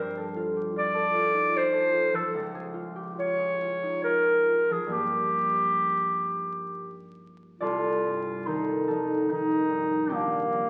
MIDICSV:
0, 0, Header, 1, 3, 480
1, 0, Start_track
1, 0, Tempo, 791557
1, 1435, Time_signature, 3, 2, 24, 8
1, 1436, Tempo, 829876
1, 1916, Tempo, 864553
1, 2876, Tempo, 900901
1, 4316, Tempo, 826446
1, 6098, End_track
2, 0, Start_track
2, 0, Title_t, "Clarinet"
2, 0, Program_c, 0, 71
2, 473, Note_on_c, 0, 74, 73
2, 950, Note_on_c, 0, 72, 69
2, 959, Note_off_c, 0, 74, 0
2, 1305, Note_on_c, 0, 69, 55
2, 1314, Note_off_c, 0, 72, 0
2, 1432, Note_off_c, 0, 69, 0
2, 1915, Note_on_c, 0, 73, 65
2, 2365, Note_off_c, 0, 73, 0
2, 2384, Note_on_c, 0, 70, 67
2, 2762, Note_on_c, 0, 68, 50
2, 2771, Note_off_c, 0, 70, 0
2, 2873, Note_on_c, 0, 67, 60
2, 2881, Note_off_c, 0, 68, 0
2, 4079, Note_off_c, 0, 67, 0
2, 4304, Note_on_c, 0, 65, 55
2, 4803, Note_on_c, 0, 63, 46
2, 4812, Note_off_c, 0, 65, 0
2, 5280, Note_off_c, 0, 63, 0
2, 5289, Note_on_c, 0, 63, 58
2, 5770, Note_on_c, 0, 58, 57
2, 5779, Note_off_c, 0, 63, 0
2, 6098, Note_off_c, 0, 58, 0
2, 6098, End_track
3, 0, Start_track
3, 0, Title_t, "Harp"
3, 0, Program_c, 1, 46
3, 0, Note_on_c, 1, 43, 50
3, 0, Note_on_c, 1, 53, 40
3, 0, Note_on_c, 1, 62, 38
3, 0, Note_on_c, 1, 65, 40
3, 0, Note_on_c, 1, 67, 46
3, 102, Note_on_c, 1, 69, 45
3, 210, Note_off_c, 1, 65, 0
3, 217, Note_on_c, 1, 65, 48
3, 335, Note_off_c, 1, 67, 0
3, 342, Note_on_c, 1, 67, 35
3, 453, Note_off_c, 1, 65, 0
3, 461, Note_on_c, 1, 65, 44
3, 551, Note_off_c, 1, 67, 0
3, 564, Note_off_c, 1, 69, 0
3, 572, Note_on_c, 1, 69, 46
3, 685, Note_off_c, 1, 65, 0
3, 692, Note_on_c, 1, 65, 42
3, 812, Note_on_c, 1, 63, 33
3, 916, Note_off_c, 1, 65, 0
3, 923, Note_on_c, 1, 65, 41
3, 1024, Note_off_c, 1, 63, 0
3, 1041, Note_off_c, 1, 69, 0
3, 1048, Note_on_c, 1, 69, 43
3, 1164, Note_off_c, 1, 65, 0
3, 1171, Note_on_c, 1, 65, 42
3, 1285, Note_off_c, 1, 53, 0
3, 1293, Note_on_c, 1, 53, 43
3, 1421, Note_on_c, 1, 37, 53
3, 1444, Note_off_c, 1, 69, 0
3, 1451, Note_off_c, 1, 43, 0
3, 1451, Note_off_c, 1, 62, 0
3, 1539, Note_on_c, 1, 68, 44
3, 1643, Note_off_c, 1, 65, 0
3, 1650, Note_on_c, 1, 65, 42
3, 1776, Note_on_c, 1, 67, 34
3, 1901, Note_off_c, 1, 65, 0
3, 1908, Note_on_c, 1, 65, 41
3, 1988, Note_off_c, 1, 67, 0
3, 2013, Note_off_c, 1, 68, 0
3, 2020, Note_on_c, 1, 68, 44
3, 2139, Note_off_c, 1, 65, 0
3, 2146, Note_on_c, 1, 65, 40
3, 2265, Note_on_c, 1, 63, 33
3, 2387, Note_off_c, 1, 65, 0
3, 2393, Note_on_c, 1, 65, 41
3, 2471, Note_off_c, 1, 63, 0
3, 2501, Note_off_c, 1, 68, 0
3, 2508, Note_on_c, 1, 68, 38
3, 2623, Note_off_c, 1, 65, 0
3, 2630, Note_on_c, 1, 65, 35
3, 2745, Note_off_c, 1, 53, 0
3, 2751, Note_on_c, 1, 53, 37
3, 2842, Note_on_c, 1, 43, 46
3, 2843, Note_off_c, 1, 53, 0
3, 2850, Note_on_c, 1, 53, 33
3, 2853, Note_on_c, 1, 58, 36
3, 2861, Note_on_c, 1, 62, 33
3, 2864, Note_on_c, 1, 67, 32
3, 2888, Note_off_c, 1, 37, 0
3, 2894, Note_off_c, 1, 68, 0
3, 4303, Note_on_c, 1, 74, 69
3, 4306, Note_on_c, 1, 36, 45
3, 4311, Note_on_c, 1, 69, 54
3, 4318, Note_off_c, 1, 43, 0
3, 4322, Note_off_c, 1, 53, 0
3, 4324, Note_off_c, 1, 58, 0
3, 4328, Note_off_c, 1, 62, 0
3, 4335, Note_off_c, 1, 65, 0
3, 4563, Note_on_c, 1, 43, 32
3, 4800, Note_off_c, 1, 69, 0
3, 4800, Note_on_c, 1, 72, 48
3, 4805, Note_on_c, 1, 51, 35
3, 4809, Note_on_c, 1, 69, 39
3, 4998, Note_off_c, 1, 67, 0
3, 5033, Note_off_c, 1, 69, 0
3, 5040, Note_on_c, 1, 69, 58
3, 5045, Note_on_c, 1, 53, 31
3, 5047, Note_on_c, 1, 63, 43
3, 5131, Note_off_c, 1, 74, 0
3, 5276, Note_off_c, 1, 51, 0
3, 5283, Note_on_c, 1, 51, 37
3, 5451, Note_off_c, 1, 53, 0
3, 5511, Note_off_c, 1, 43, 0
3, 5518, Note_on_c, 1, 43, 34
3, 5748, Note_on_c, 1, 67, 71
3, 5755, Note_on_c, 1, 34, 47
3, 5759, Note_on_c, 1, 62, 46
3, 5776, Note_off_c, 1, 36, 0
3, 5779, Note_off_c, 1, 43, 0
3, 5779, Note_off_c, 1, 69, 0
3, 5781, Note_off_c, 1, 51, 0
3, 5782, Note_off_c, 1, 63, 0
3, 5995, Note_on_c, 1, 41, 39
3, 6098, Note_off_c, 1, 34, 0
3, 6098, Note_off_c, 1, 41, 0
3, 6098, Note_off_c, 1, 62, 0
3, 6098, Note_off_c, 1, 67, 0
3, 6098, Note_off_c, 1, 72, 0
3, 6098, End_track
0, 0, End_of_file